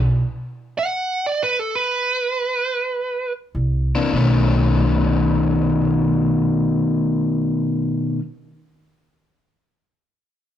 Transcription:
0.00 0.20 B1 medium
0.79 1.25 F#5 medium
1.26 1.42 D5 medium
1.43 1.59 B4 loud
1.59 1.75 A4 medium
1.75 3.32 B4 medium
3.55 3.91 C2 medium
3.95 4.13 C3 medium
3.95 4.14 E3 medium
3.95 4.14 A#3 medium
3.95 4.14 D4 medium
4.13 8.14 B1 medium
4.13 8.18 B2 medium
4.13 8.20 D#3 loud
4.13 8.21 A3 medium
4.17 8.22 C#4 loud

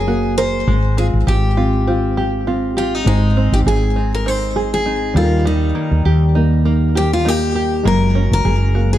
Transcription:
0.00 0.63 F#1 medium
0.00 0.67 F#3 medium
0.00 0.67 G#3 medium
0.00 0.74 C#4 medium
0.00 0.34 G#4 medium
0.00 0.37 G#4 medium
0.00 0.37 A#4 medium
0.07 0.74 A#3 medium
0.07 0.74 F#4 medium
0.38 1.28 G#4 medium
0.38 0.74 A#4 medium
0.38 0.98 C5 loud
0.67 1.10 G#1 medium
0.67 3.06 G#3 medium
0.67 4.18 G#3 medium
0.97 1.87 C4 medium
0.97 1.87 F4 medium
0.97 1.06 G#4 medium
1.13 1.26 G#1 medium
1.27 3.03 G#1 medium
1.27 2.16 G4 medium
1.27 2.82 G4 medium
1.27 2.16 G4 medium
1.57 2.47 C4 medium
1.57 2.46 F4 medium
1.87 3.27 C4 medium
1.87 3.14 F4 medium
2.17 2.76 G4 medium
2.47 3.96 C4 medium
2.47 3.13 F4 medium
2.77 2.95 F4 medium
2.77 3.13 G4 medium
2.95 3.06 D#4 medium
3.04 3.49 G#1 medium
3.04 5.23 G#2 medium
3.04 5.11 G#3 medium
3.04 5.16 G#3 medium
3.04 5.12 D#4 medium
3.04 3.55 D#4 medium
3.04 5.13 C5 medium
3.37 4.25 C4 medium
3.37 4.26 D#4 medium
3.52 3.65 G#1 medium
3.52 3.59 G4 medium
3.66 5.12 G#1 medium
3.66 4.55 G#4 medium
3.66 4.14 G#4 medium
3.96 4.85 C4 soft
3.96 4.85 D#4 medium
4.14 4.28 A#4 medium
4.26 5.22 C4 medium
4.26 5.75 D#4 medium
4.26 4.73 C5 medium
4.56 5.22 G#4 medium
4.56 5.23 G#4 medium
4.74 5.17 G#4 medium
4.86 5.22 C4 medium
4.86 6.26 D#4 medium
5.14 5.71 D#2 medium
5.14 5.45 D#3 medium
5.14 7.50 G3 medium
5.14 5.44 G3 medium
5.14 7.51 D#4 soft
5.14 5.44 F4 medium
5.14 5.24 A4 medium
5.24 7.55 A#4 medium
5.45 7.85 D#3 medium
5.45 6.65 G3 medium
5.45 6.02 D#4 medium
5.75 6.65 A#3 medium
5.75 6.64 D#4 medium
5.91 6.04 D#2 medium
6.05 7.81 D#2 medium
6.05 6.94 G4 medium
6.35 7.25 A#3 medium
6.35 7.24 D#4 medium
6.65 7.85 A#3 medium
6.65 7.92 D#4 medium
6.95 7.54 G4 medium
6.95 7.13 G4 medium
7.13 7.28 F4 medium
7.25 8.48 A#3 medium
7.25 7.92 D#4 medium
7.25 7.87 G4 medium
7.55 7.92 G4 medium
7.83 8.28 F#1 medium
7.83 8.98 F#3 medium
7.83 8.98 G#3 medium
7.83 8.98 A#3 medium
7.83 8.98 F#4 medium
7.87 8.32 A#4 loud
7.87 8.98 A#4 medium
8.15 8.98 C#4 medium
8.31 8.44 F#1 medium
8.31 8.93 A#4 medium
8.45 8.98 F#1 medium
8.45 8.98 G#4 medium
8.75 8.98 A#3 medium
8.75 8.98 F#4 medium
8.93 8.98 G#4 medium

